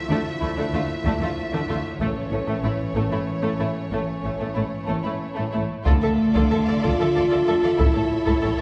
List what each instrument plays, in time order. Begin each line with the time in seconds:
Already playing: french horn section F3 E4, violin section E5
0.09 double bass section D2, cello section D3, viola section A3, violin section D4
0.40 double bass section D2, cello section D3, viola section A3, violin section E4
0.56 cello section D3, viola section A3, violin section D4
0.73 double bass section D2, cello section D3, viola section A3, violin section F4
1.04 double bass section D2, cello section D3, viola section A3, violin section D4
1.20 cello section D3, viola section A3, violin section F4
1.51 cello section D3, viola section A3, violin section D4
1.68 double bass section D2, cello section D3, viola section A3, violin section F4
1.98 double bass section A1, cello section A2, french horn section E3 C#4, viola section A3, violin section A3 C#5, taiko
2.31 double bass section A1, cello section A2, viola section A3, violin section C#4
2.47 cello section A2, viola section A3, violin section A3
2.62 double bass section A1, cello section A2, viola section A3, violin section E4
2.94 double bass section A1, cello section A2, violin section A3, viola section A3
3.11 cello section A2, viola section A3, violin section E4
3.42 cello section A2, viola section A3, violin section A3
3.59 double bass section A1, cello section A2, viola section A3, violin section E4
3.91 double bass section A1, cello section A2, violin section A3, viola section A3
4.23 double bass section A1, cello section A2, viola section A3, violin section C#4
4.38 cello section A2, violin section A3, viola section A3
4.54 double bass section A1, cello section A2, viola section A3, violin section E4
4.86 double bass section A1, cello section A2, violin section A3, viola section A3
5.03 cello section A2, viola section A3, violin section E4
5.35 cello section A2, violin section A3, viola section A3
5.52 double bass section A1, cello section A2, viola section A3, violin section E4
5.84 double bass section D2, cello section D3, violin section F4 D5, string section F4 A4 D5 E5, viola section A4, taiko
5.88 french horn section A3
6.00 cello section D3, violin section A4 E5, viola section A4
6.34 cello section D3, violin section F4 D5, viola section A4, taiko
6.50 double bass section D2, cello section D3, violin section A4 E5, viola section A4
6.66 cello section D3, viola section A4, violin section D5 F5
6.81 double bass section D2, cello section D3, violin section F4 D5, french horn section F4, viola section A4, taiko
7.00 cello section D3, violin section A4 E5, viola section A4
7.15 double bass section D2, cello section D3, viola section A4, violin section D5 F5
7.30 cello section D3, violin section F4 D5, viola section A4
7.46 double bass section D2, cello section D3, violin section A4 E5, viola section A4
7.63 cello section D3, viola section A4, violin section D5 F5
7.77 double bass section A1, cello section A2, french horn section E4, violin section E4 A4, string section E4 C#5, viola section A4, taiko
7.93 cello section A2, viola section A4, violin section A4 C#5
8.26 cello section A2, violin section E4 A4, viola section A4, taiko
8.42 double bass section A1, cello section A2, viola section A4, violin section A4 C#5
8.58 viola section A4, violin section C#5 E5